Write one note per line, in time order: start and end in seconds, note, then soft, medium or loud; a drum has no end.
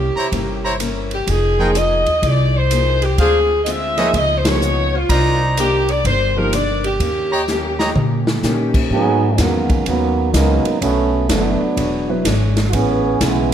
0.00 0.12 C2 medium
0.00 0.18 C3 medium
0.00 0.18 A#3 medium
0.00 0.18 C#4 medium
0.00 0.18 E4 medium
0.00 0.75 G4 medium
0.16 0.27 E4 medium
0.16 0.27 C5 medium
0.16 0.27 C#5 medium
0.16 0.27 A#5 medium
0.16 muted upright bass stroke soft
0.32 1.24 G1 medium
0.32 0.65 C3 soft
0.32 0.66 A#3 soft
0.32 0.66 C#4 medium
0.32 0.66 E4 medium
0.32 kick soft
0.32 ride medium
0.64 0.75 E4 medium
0.64 0.75 C5 medium
0.64 0.75 C#5 medium
0.64 0.75 A#5 medium
0.80 1.13 C3 medium
0.80 1.13 A#3 medium
0.80 1.14 C#4 medium
0.80 1.14 E4 medium
0.80 hi-hat pedal medium
0.80 ride medium
1.11 1.28 G4 medium
1.11 ride soft
1.27 2.02 F1 medium
1.27 1.61 F3 soft
1.27 1.61 A#3 medium
1.27 1.62 D#4 soft
1.27 1.77 G#4 loud
1.27 1.62 G#4 medium
1.27 kick soft
1.27 ride medium
1.59 1.74 F3 medium
1.59 1.74 A#3 medium
1.59 1.74 D#4 medium
1.59 1.71 D#4 medium
1.59 1.70 G#4 medium
1.59 1.74 G#4 medium
1.59 1.71 A#4 medium
1.59 1.71 G5 medium
1.75 2.09 F3 medium
1.75 2.09 A#3 medium
1.75 2.09 D#4 medium
1.75 2.10 G#4 medium
1.75 2.24 D#5 medium
1.75 hi-hat pedal medium
1.75 ride medium
2.06 2.22 D#2 medium
2.06 ride soft
2.22 3.14 C2 medium
2.22 2.57 F3 soft
2.22 2.57 A#3 soft
2.22 2.57 D#4 medium
2.22 2.57 G#4 medium
2.22 2.56 D5 medium
2.22 kick soft
2.22 ride medium
2.56 3.03 C5 loud
2.71 3.04 F3 medium
2.71 3.05 A#3 medium
2.71 3.05 D#4 medium
2.71 3.05 G#4 medium
2.71 hi-hat pedal medium
2.71 ride medium
3.02 3.19 G4 medium
3.02 ride soft
3.18 4.10 D2 medium
3.18 3.52 D3 soft
3.18 3.52 G#3 medium
3.18 3.53 C4 medium
3.18 3.40 D4 medium
3.18 3.53 F4 medium
3.18 3.40 G#4 medium
3.18 3.59 G#4 loud
3.18 3.40 C5 medium
3.18 3.40 F5 medium
3.18 kick soft
3.18 ride medium
3.63 3.99 D3 medium
3.63 3.99 G#3 medium
3.63 3.67 D#5 medium
3.63 hi-hat pedal soft
3.63 ride medium
3.67 4.00 C4 medium
3.67 4.00 F4 medium
3.67 4.16 E5 loud
3.97 4.12 F3 medium
3.97 4.13 A#3 medium
3.97 4.09 D#4 medium
3.97 4.13 D#4 medium
3.97 4.13 G#4 medium
3.97 4.09 B4 medium
3.97 4.09 C#5 medium
3.97 4.09 D#5 loud
3.97 snare soft
3.97 ride soft
4.14 5.05 C#2 medium
4.14 4.47 C#3 soft
4.14 4.47 F3 medium
4.14 4.48 B3 soft
4.14 4.48 D#4 medium
4.14 4.38 D#5 loud
4.14 kick soft
4.14 ride medium
4.38 4.46 C5 medium
4.45 4.60 F3 medium
4.45 4.60 A#3 medium
4.45 4.60 D#4 medium
4.45 4.61 G4 medium
4.45 4.95 C#5 loud
4.45 snare medium
4.45 ride medium
4.61 4.94 C#3 medium
4.61 4.95 F3 medium
4.61 4.95 B3 medium
4.61 4.95 D#4 medium
4.61 hi-hat pedal medium
4.96 5.38 F4 medium
5.09 6.01 C2 medium
5.09 5.42 C3 soft
5.09 5.42 D#3 soft
5.09 5.43 A#3 medium
5.09 5.43 D4 medium
5.09 5.82 D#4 medium
5.09 5.82 C5 medium
5.09 5.82 D5 medium
5.09 5.82 A#5 loud
5.09 kick soft
5.09 ride medium
5.57 5.90 C3 medium
5.57 5.90 D#3 medium
5.57 5.91 A#3 medium
5.57 5.91 D4 medium
5.57 5.88 G4 loud
5.57 hi-hat pedal medium
5.57 ride medium
5.88 6.06 D5 loud
5.88 ride soft
6.04 6.96 G1 medium
6.04 6.38 C3 medium
6.04 6.38 D#3 medium
6.04 6.38 A#3 medium
6.04 6.39 D4 medium
6.04 6.35 C5 loud
6.04 kick soft
6.04 ride medium
6.36 6.51 F3 medium
6.36 6.51 A#3 medium
6.36 6.51 D#4 medium
6.36 6.52 G4 medium
6.36 6.54 A#4 medium
6.53 6.86 C3 medium
6.53 6.86 D#3 medium
6.53 6.86 A#3 medium
6.53 6.87 D4 medium
6.53 6.85 D5 medium
6.53 hi-hat pedal medium
6.53 ride medium
6.84 8.40 G4 medium
6.84 ride soft
6.99 7.91 D#2 medium
6.99 7.33 D#3 medium
6.99 7.34 A#3 soft
6.99 7.34 C#4 medium
6.99 7.34 G4 medium
6.99 kick soft
6.99 ride medium
7.32 7.43 G4 medium
7.32 7.43 C#5 medium
7.32 7.43 D#5 medium
7.32 7.43 A#5 medium
7.48 7.81 D#3 medium
7.48 7.81 A#3 medium
7.48 7.81 C#4 medium
7.48 7.81 G4 medium
7.48 snare soft
7.48 hi-hat pedal medium
7.79 7.90 G4 medium
7.79 7.90 C#5 medium
7.79 7.90 D#5 medium
7.79 7.91 A#5 medium
7.79 snare medium
7.95 8.40 A#2 medium
7.95 8.29 D#3 medium
7.95 8.29 A#3 soft
7.95 8.29 C#4 medium
7.95 8.30 G4 medium
7.95 mid tom medium
8.27 snare medium
8.43 8.88 A#2 medium
8.43 8.77 D#3 medium
8.43 8.91 A#3 medium
8.43 8.77 A#3 medium
8.43 8.91 C#4 medium
8.43 8.77 C#4 medium
8.43 8.92 D#4 medium
8.43 8.92 G4 medium
8.43 8.77 G4 medium
8.43 snare medium
8.43 hi-hat pedal medium
8.74 kick medium
8.74 crash medium
8.90 9.37 G#2 medium
8.90 9.24 G#2 soft
8.90 9.36 F#3 loud
8.90 9.25 F#3 medium
8.90 9.36 B3 medium
8.90 9.25 B3 medium
8.90 9.25 C#4 medium
8.90 9.36 D#4 medium
8.90 9.36 G#4 loud
8.90 kick soft
9.38 9.85 E2 medium
9.38 9.72 G#2 medium
9.38 9.86 D#3 medium
9.38 9.86 F#3 medium
9.38 9.72 F#3 medium
9.38 10.12 G#3 medium
9.38 9.85 A#3 medium
9.38 9.86 B3 medium
9.38 9.72 B3 medium
9.38 9.73 C#4 medium
9.38 10.13 C#4 soft
9.38 10.13 F#4 soft
9.38 10.13 A#4 medium
9.38 kick soft
9.38 snare medium
9.38 hi-hat pedal medium
9.38 ride medium
9.70 kick medium
9.70 ride soft
9.86 10.33 D#2 medium
9.86 10.20 G#2 soft
9.86 10.31 D#3 medium
9.86 10.31 F#3 medium
9.86 10.20 F#3 soft
9.86 10.31 A#3 medium
9.86 10.31 B3 medium
9.86 10.20 B3 medium
9.86 10.21 C#4 medium
9.86 kick soft
9.86 ride medium
10.33 10.63 C#2 medium
10.33 10.67 G#2 medium
10.33 10.79 F#3 medium
10.33 10.68 F#3 medium
10.33 10.63 G#3 medium
10.33 10.79 A#3 medium
10.33 10.78 B3 medium
10.33 10.68 B3 medium
10.33 10.68 C#4 medium
10.33 10.63 C#4 medium
10.33 10.79 D#4 medium
10.33 10.63 F#4 medium
10.33 10.63 A#4 medium
10.33 kick soft
10.33 snare medium
10.33 hi-hat pedal medium
10.33 ride medium
10.65 muted upright bass stroke soft
10.65 ride soft
10.81 11.28 B1 medium
10.81 11.15 B2 soft
10.81 11.26 F#3 medium
10.81 11.16 F#3 medium
10.81 11.26 A3 medium
10.81 11.16 A3 medium
10.81 11.26 B3 medium
10.81 11.26 C#4 medium
10.81 11.16 D4 medium
10.81 kick soft
10.81 ride medium
11.29 11.59 F#1 medium
11.29 11.63 B2 medium
11.29 12.53 F#3 medium
11.29 11.63 F#3 medium
11.29 11.59 F#3 medium
11.29 11.74 A3 medium
11.29 11.63 A3 medium
11.29 12.53 B3 medium
11.29 11.59 B3 medium
11.29 12.52 D4 medium
11.29 11.64 D4 medium
11.29 11.59 E4 medium
11.29 11.59 A4 medium
11.29 kick soft
11.29 snare medium
11.29 hi-hat pedal medium
11.29 ride medium
11.61 muted upright bass stroke soft
11.77 12.24 E1 medium
11.77 12.11 E3 medium
11.77 12.11 D4 soft
11.77 12.11 G#4 soft
11.77 12.12 C#5 medium
11.77 kick soft
11.77 ride medium
12.09 12.24 F#3 medium
12.09 12.24 B3 medium
12.09 12.24 E4 medium
12.09 12.24 B4 medium
12.25 12.72 G#1 medium
12.25 12.59 E3 medium
12.25 12.59 D4 medium
12.25 12.59 G#4 medium
12.25 12.60 C#5 medium
12.25 kick soft
12.25 snare medium
12.25 hi-hat pedal medium
12.25 ride medium
12.57 snare medium
12.57 ride soft
12.68 12.73 F#4 medium
12.73 13.20 A1 medium
12.73 13.20 E3 medium
12.73 13.07 A3 soft
12.73 13.21 B3 loud
12.73 13.21 C#4 loud
12.73 13.07 C#4 medium
12.73 13.21 G#4 loud
12.73 13.08 G#4 medium
12.73 kick soft
12.73 ride medium
12.77 13.08 B4 medium
13.21 13.54 B1 medium
13.21 13.54 C#3 medium
13.21 13.54 E3 medium
13.21 13.54 G#3 medium
13.21 13.54 A3 medium
13.21 13.54 B3 medium
13.21 13.54 C#4 medium
13.21 13.54 G#4 medium
13.21 13.54 B4 medium
13.21 kick soft
13.21 snare medium
13.21 hi-hat pedal medium
13.21 ride medium